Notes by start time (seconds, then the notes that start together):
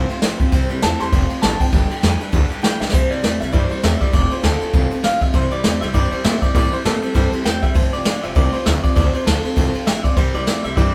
Already playing: A3 C4 C5
0.10 F2 C3 C4 F4 C5, muted upright bass stroke, ride
0.22 A1 F2 D3 A3 C4 F4 C5, snare, ride
0.39 D2 F2 C3 C4 F4 C5, kick, ride
0.52 C2 C3 E3 G3 C4 E4 C5, kick, ride
0.69 C2 C3 G3 C4 E4 C5, ride
0.82 E2 C3 G3 A3 C4 E4 C5 A5, snare, ride
0.99 E2 C3 G3 C4 E4 C5 C6, snare, ride
1.12 F1 F2 C3 F3 A3 C4 F4 C5, kick, ride
1.30 F2 C3 C4 F4 C5, ride
1.42 A1 F2 D3 A3 C4 F4 C5 A5, snare, ride
1.59 F2 C3 C4 F4 C5 G5, kick, ride
1.72 G1 G2 D3 G3 D4 G4 B4, kick, ride
1.89 G2 D3 D4 G4 B4, muted upright bass stroke, ride
2.02 F2 G2 E3 G3 D4 G4 B4, snare, ride
2.19 G2 D3 D4 G4 B4, muted upright bass stroke, ride
2.32 D2 G2 D3 G3 D4 G4 B4, kick, ride
2.49 G2 D3 D4 G4 B4, muted upright bass stroke, ride
2.62 B1 G2 E3 G3 D4 G4 B4 G5, snare, ride
2.80 B1 G2 D3 D4 G4 B4 E5, snare
2.89 C3 E3 G3 C4 E4 C5, kick, snare
2.94 C2 G3 C5, crash
3.09 C2 C3 G3 C4 E4 C5 D5, ride
3.22 E2 C3 G3 A3 C4 E4 C5, snare, ride
3.40 C2 C3 G3 C4 E4 C5 E5, snare, ride
3.52 G2 C3 E3 G3 C4 E4 C5 D5, kick, ride
3.69 C3 G3 C4 E4 C5, muted upright bass stroke, ride
3.82 E2 C3 G3 A3 C4 E4 C5 E5, snare, ride
4.00 C3 G3 C4 E4 C5 D5, muted upright bass stroke, kick, ride
4.13 F1 F2 C3 F3 A3 C4 F4 C5 D5, kick, ride
4.30 F2 C3 C4 F4 C5, ride
4.43 D2 F2 D3 A3 C4 F4 A4 C5, snare, ride
4.60 F2 C3 C4 F4 C5, muted upright bass stroke, ride
4.73 C2 F2 C3 F3 A3 C4 F4 C5, kick, ride
4.91 F2 C3 C4 F4 C5, muted upright bass stroke, ride
5.03 A1 F2 D3 A3 C4 F4 C5 F5, snare, ride
5.21 A#1 F2 C3 C4 F4 C5 E5, kick, ride
5.33 C2 C3 E3 G3 C4 E4 C5, kick, ride
5.50 C3 G3 C4 E4 C5 D5, ride
5.63 E2 C3 G3 A3 C4 E4 C5, snare, ride
5.81 C2 C3 G3 C4 E4 C5 E5, snare, ride
5.93 G2 C3 E3 G3 C4 E4 C5 D5, kick, ride
6.11 C3 G3 C4 E4 C5, muted upright bass stroke, ride
6.24 A#2 C3 G3 A3 C4 E4 C5 E5, snare, ride
6.42 C3 G3 C4 E4 C5 D5, muted upright bass stroke, kick, ride
6.55 A2 C3 E3 G3 C4 E4 C5 D5, kick, ride
6.72 C3 G3 C4 E4 C5, muted upright bass stroke, ride
6.84 A#2 C3 G3 A3 C4 E4 A4 C5, snare, ride
7.02 C3 G3 C4 E4 C5, muted upright bass stroke, ride
7.14 G2 C3 E3 G3 C4 E4 C5, kick, ride
7.32 C3 G3 C4 E4 C5, muted upright bass stroke, ride
7.44 E2 C3 G3 A3 C4 E4 C5 G5, snare, ride
7.62 A#1 C3 G3 C4 E4 C5 E5, kick, ride
7.74 F1 F2 C3 F3 A3 C4 F4 C5, kick, ride
7.92 F1 F2 C3 C4 F4 C5 D5, ride
8.04 A1 F2 D3 A3 C4 F4 C5, snare, ride
8.23 F1 F2 C3 C4 F4 C5 E5, ride
8.35 C2 F2 C3 F3 A3 C4 F4 C5 D5, kick, ride
8.52 F2 C3 C4 F4 C5, ride
8.65 D2 F2 D3 A3 C4 F4 C5 E5, snare, ride
8.83 F2 C3 C4 F4 C5 D5, muted upright bass stroke, kick, ride
8.95 D2 F2 C3 F3 A3 C4 F4 C5 D5, kick, ride
9.13 F2 C3 C4 F4 C5, ride
9.26 D2 F2 D3 A3 C4 F4 A4 C5, snare, ride
9.43 F2 C3 C4 F4 C5, muted upright bass stroke, ride
9.56 C2 F2 C3 F3 A3 C4 F4 C5, kick, ride
9.73 F2 C3 C4 F4 C5, muted upright bass stroke, ride
9.86 A1 F2 D3 A3 C4 F4 C5 E5, snare, ride
10.04 D2 F2 C3 C4 F4 C5 D5, kick, ride
10.16 C2 C3 E3 G3 C4 E4 C5, kick, ride
10.34 C2 C3 G3 C4 E4 C5 D5, ride
10.46 E2 C3 G3 A3 C4 E4 C5, snare, ride
10.64 C2 C3 G3 C4 E4 C5 E5, ride
10.77 G2 C3 E3 G3 C4 E4 C5 D5, kick, ride